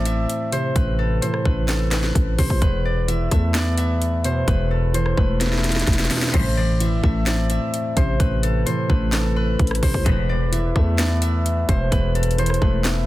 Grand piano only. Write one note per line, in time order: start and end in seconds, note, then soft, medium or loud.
0.00 0.76 A2 medium
0.00 0.53 E3 medium
0.00 0.76 A3 loud
0.00 0.99 C4 medium
0.52 1.69 C3 medium
0.76 1.92 A2 medium
1.23 2.39 E3 medium
1.46 2.62 A3 medium
1.69 2.62 C4 medium
2.38 2.62 C3 medium
2.62 3.78 E2 medium
3.08 4.24 E3 medium
3.31 4.48 A3 loud
3.55 4.71 B3 medium
4.25 5.41 B2 medium
4.48 5.64 E2 medium
4.94 6.10 E3 medium
5.17 6.34 A3 medium
5.41 6.34 B3 medium
6.11 6.34 B2 medium
6.34 7.50 A2 medium
6.80 7.97 E3 medium
7.04 8.20 A3 loud
7.28 8.43 C4 medium
7.96 9.13 C3 medium
8.20 9.36 A2 medium
8.67 9.83 E3 medium
8.90 10.06 A3 medium
9.13 10.06 C4 medium
9.83 10.06 C3 medium
10.06 11.22 E2 medium
10.52 11.69 E3 medium
10.76 11.92 A3 loud
10.99 12.15 B3 medium
11.69 12.85 B2 medium
11.93 13.06 E2 medium
12.38 13.06 E3 medium
12.62 13.06 A3 medium
12.85 13.06 B3 medium